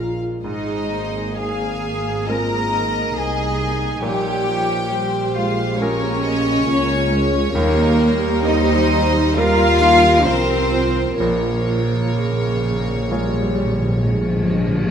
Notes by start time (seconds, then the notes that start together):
Already playing: A#1 A#2 G#3 C#4 F4 A#4 F5
0.43 G#1 G#2 G#3 D#4 G#4 C5 D#5
0.91 A#3
1.38 G#4 F5 G#5
2.27 G#3 C4 F4 A#4 D#5 A#5
2.71 D#4
3.15 C2 G#4 G#5
4.03 A#1 A#2 G3 G4 C#5 G5
4.48 F3
4.92 G3 G4 C5
5.35 G#3 F4 F5
5.78 G#3 A#3 C#4 F4 A#4 C#5
5.82 A#4
6.24 D#5
6.66 C#2 A#3 F4 C#5
7.10 G#3
7.54 D#2 G3 A#3 D#4 A#4
7.99 G4
8.46 D#4 C5 D#5
9.34 G3 F4 A#4 F5
9.79 D#4
10.25 C2 F3 C4 F4 C5
11.18 A#1 A#2 F3 A#3 F4 A#4 C#5
11.36 A#2
11.43 A#2
11.52 A#2
11.70 A#2
11.76 A#2
11.85 A#2
12.14 C#3
12.26 A#2
12.33 A#2
12.42 A#2
12.49 A#2
12.56 A#2
12.64 A#2
12.71 A#2
12.79 A#2
12.86 A#2
12.94 A#2
13.03 A#2
13.09 A#2 G3 G#3 F4 C#5
13.18 A#2
13.26 A#2
13.34 A#2
13.43 A#2
13.50 A#2
13.58 A#2
13.65 A#2
13.73 A#2
13.80 A#2
13.89 A#2
13.97 A#2
14.04 A#2 G#3
14.13 A#2
14.21 A#2
14.29 A#2
14.36 A#2
14.44 A#2
14.52 A#2
14.60 A#2
14.68 A#2
14.76 A#2
14.85 A#2